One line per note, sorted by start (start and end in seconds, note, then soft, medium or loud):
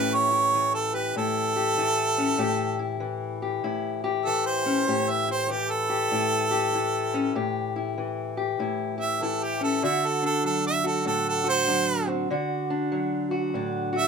0.00 1.16 A2 medium
0.00 0.54 E3 medium
0.00 2.17 C#4 medium
0.00 0.31 E4 medium
0.00 0.93 G4 medium
0.00 0.16 B4 medium
0.14 0.73 C#5 medium
0.31 1.16 E4 medium
0.55 1.77 E3 medium
0.74 0.96 A4 medium
0.93 1.56 G4 medium
0.93 1.15 B4 medium
1.16 2.37 A2 medium
1.16 1.78 E4 medium
1.16 2.98 A4 loud
1.56 2.39 G4 medium
1.78 3.00 E3 medium
1.78 2.79 E4 medium
2.18 2.42 C#4 medium
2.38 3.63 A2 medium
2.38 3.42 G4 medium
2.79 3.64 E4 medium
3.00 4.26 E3 medium
3.42 4.03 G4 medium
3.64 4.87 A2 medium
3.64 4.27 E4 medium
4.04 4.88 G4 medium
4.25 5.50 E3 medium
4.25 5.28 E4 medium
4.25 4.45 A4 medium
4.46 5.12 C5 medium
4.66 4.92 C#4 medium
4.88 6.11 A2 medium
4.88 5.89 G4 medium
5.10 5.29 E5 medium
5.28 6.11 E4 medium
5.28 5.53 C5 medium
5.50 6.73 E3 medium
5.50 5.72 G4 medium
5.71 7.52 A4 medium
5.89 6.50 G4 medium
6.12 7.32 A2 medium
6.12 6.73 E4 medium
6.51 7.33 G4 medium
6.74 7.96 E3 medium
6.74 7.33 E4 medium
7.14 7.33 C#4 medium
7.35 8.58 A2 medium
7.35 8.36 G4 medium
7.76 8.58 E4 medium
7.98 9.21 E3 medium
8.37 8.96 G4 medium
8.59 9.80 A2 medium
8.59 9.21 E4 medium
8.98 9.80 G4 medium
8.98 9.24 E5 medium
9.22 9.83 E3 medium
9.22 9.81 E4 medium
9.22 9.44 A4 medium
9.43 9.62 G4 medium
9.61 9.80 C#4 medium
9.61 9.83 A4 medium
9.83 12.28 D3 medium
9.83 10.84 F#4 medium
9.83 10.07 E5 medium
10.06 10.25 A4 medium
10.22 11.05 D4 medium
10.22 10.45 A4 medium
10.44 11.66 F#3 medium
10.44 10.65 A4 medium
10.67 10.86 E5 medium
10.84 11.43 F#4 medium
10.84 11.06 A4 medium
11.05 12.27 A2 medium
11.05 11.67 D4 medium
11.05 11.27 A4 medium
11.29 11.48 A4 medium
11.44 12.30 F#4 medium
11.49 12.08 C5 loud
11.67 12.27 F#3 medium
11.67 12.27 D4 medium
12.07 12.28 C4 medium
12.30 14.08 D3 medium
12.30 13.30 F#4 medium
12.70 13.54 D4 medium
12.92 14.08 F#3 medium
13.31 13.92 F#4 medium
13.54 14.08 A2 medium
13.54 14.08 D4 medium
13.93 14.08 F#4 medium
13.98 14.08 E5 loud